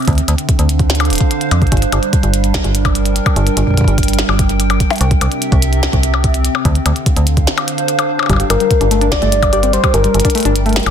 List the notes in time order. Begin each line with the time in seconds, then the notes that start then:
Already playing: C4 G5
0.02 closed hi-hat
0.05 closed hi-hat
0.08 D2 D3, kick, closed hi-hat
0.10 closed hi-hat
0.13 closed hi-hat
0.15 closed hi-hat
0.18 closed hi-hat
0.24 D4
0.28 D2, closed hi-hat
0.38 closed hi-hat
0.49 kick, closed hi-hat
0.59 D2 C5 F5, closed hi-hat
0.69 closed hi-hat
0.79 kick, closed hi-hat
0.90 snare, closed hi-hat
0.95 closed hi-hat
1.00 closed hi-hat, percussion blips
1.05 closed hi-hat
1.10 D1, closed hi-hat
1.13 closed hi-hat
1.15 closed hi-hat
1.18 closed hi-hat
1.21 kick, closed hi-hat
1.31 closed hi-hat
1.41 closed hi-hat
1.51 F2, closed hi-hat, percussion blips
1.62 A1, kick, closed hi-hat
1.67 closed hi-hat
1.72 G1 G3, kick, closed hi-hat
1.77 closed hi-hat
1.82 closed hi-hat
1.92 G1, closed hi-hat, percussion blips
2.03 closed hi-hat
2.13 kick, closed hi-hat
2.23 G1, closed hi-hat
2.34 closed hi-hat
2.38 A#4
2.44 closed hi-hat
2.54 kick, snare, closed hi-hat
2.64 G1, closed hi-hat
2.75 closed hi-hat
2.80 G5
2.85 kick, closed hi-hat, percussion blips
2.95 closed hi-hat
3.06 closed hi-hat
3.16 closed hi-hat
3.26 kick, closed hi-hat, percussion blips
3.36 G1, closed hi-hat
3.47 closed hi-hat
3.57 G1, closed hi-hat
3.67 kick
3.71 kick
3.74 kick
3.77 kick, closed hi-hat
3.81 kick
3.84 G1, kick, closed hi-hat
3.98 kick, closed hi-hat
4.03 closed hi-hat
4.08 closed hi-hat
4.13 closed hi-hat
4.19 snare, closed hi-hat
4.29 G1, percussion blips
4.39 kick, closed hi-hat
4.49 closed hi-hat
4.60 closed hi-hat
4.70 closed hi-hat, percussion blips
4.80 kick, closed hi-hat
4.91 closed hi-hat, percussion blips
4.93 closed hi-hat
4.96 closed hi-hat
4.98 C2 C3, closed hi-hat
5.01 closed hi-hat
5.11 C4, kick, closed hi-hat
5.19 C2 E5, closed hi-hat, percussion blips
5.32 closed hi-hat
5.42 closed hi-hat
5.52 C2, kick, closed hi-hat
5.62 closed hi-hat
5.73 closed hi-hat
5.83 snare, closed hi-hat
5.93 C2, kick, closed hi-hat
6.03 closed hi-hat
6.14 percussion blips
6.24 kick, closed hi-hat
6.34 closed hi-hat
6.45 closed hi-hat
6.55 percussion blips
6.65 D2 D3, kick, closed hi-hat
6.75 closed hi-hat
6.86 D2, closed hi-hat, percussion blips
6.94 F5, closed hi-hat
7.00 D4
7.06 kick, closed hi-hat
7.17 D2, closed hi-hat
7.27 closed hi-hat
7.37 C5, kick, closed hi-hat
7.47 snare, closed hi-hat
7.58 closed hi-hat, percussion blips
7.68 closed hi-hat
7.78 closed hi-hat
7.88 closed hi-hat
7.99 closed hi-hat, percussion blips
8.19 percussion blips
8.23 percussion blips
8.26 G1 G3, kick, closed hi-hat, percussion blips
8.30 percussion blips
8.33 percussion blips
8.36 G4, closed hi-hat, percussion blips
8.50 G1 G3 A#4, closed hi-hat, percussion blips
8.60 G3, closed hi-hat
8.71 kick, closed hi-hat
8.81 G1 D4, closed hi-hat
8.91 A3, closed hi-hat
8.96 A#4
9.01 D4, closed hi-hat
9.12 D5, kick, snare, closed hi-hat
9.22 G1 A3, closed hi-hat
9.32 G3, closed hi-hat
9.43 kick, closed hi-hat, percussion blips
9.47 G5
9.53 G4 D5, closed hi-hat
9.63 C4, closed hi-hat
9.73 G3 C5, closed hi-hat
9.84 G4, kick, closed hi-hat, percussion blips
9.94 G1 G3 A#4, closed hi-hat
10.04 G3, closed hi-hat
10.14 G1, closed hi-hat
10.20 closed hi-hat
10.25 D4, kick, closed hi-hat
10.30 closed hi-hat
10.35 A3, closed hi-hat
10.38 closed hi-hat
10.40 closed hi-hat
10.43 G1 D4, closed hi-hat
10.45 closed hi-hat
10.56 closed hi-hat
10.66 A3, closed hi-hat
10.69 closed hi-hat
10.73 G3, snare, closed hi-hat
10.76 closed hi-hat
10.80 closed hi-hat
10.83 G1, closed hi-hat
10.86 closed hi-hat, percussion blips